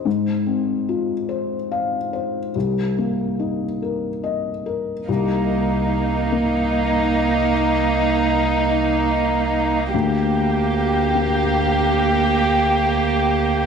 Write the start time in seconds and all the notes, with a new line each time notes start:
0.05 G#2
0.46 C4
0.89 F4
1.29 C5
1.72 F5
2.13 C5
2.55 C2
2.98 A#3
3.39 D#4
3.82 A#4
4.24 D#5
4.66 A#4
5.07 C2 A#3 D#4
6.32 A#3
9.93 D2 A#3 G4
11.15 A#3